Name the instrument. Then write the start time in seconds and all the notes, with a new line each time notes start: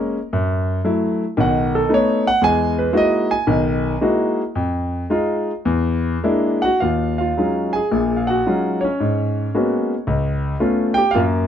grand piano
Already playing: G#3 A#3 C#4
0.33 F#2
0.84 F#3 A3 E4
1.37 B1 D#3 F#5
1.75 A4
1.89 A3 B3 D#4
1.94 C#5
2.27 F#5
2.41 E2 G#3 G#5
2.79 B4
2.93 G#3 A#3 D#4 E4 F#4
2.97 D#5
3.31 G#5
3.47 B1 D#3
4.01 G#3 A#3 D#4 E4 F#4
4.55 F2
5.10 G#3 D#4 F4
5.65 E2
6.24 G#3 A#3 D4 E4
6.62 F#4 F#5
6.80 D#2 F4 F5
7.18 F4 F5
7.37 F#3 G#3 C#4 D#4 F4
7.73 G#4 G#5
7.92 A#1 A#2
8.17 F5
8.27 F#4 F#5
8.46 F#3 G#3 C#4 D#4 F4
8.81 C#4 C#5
9.00 G#2
9.55 G#3 A#3 B3 C#4 F#4
10.07 C#2
10.60 A3 B3 C#4 F4
10.94 G4 G5
11.11 F4 F5
11.15 F#2 A#3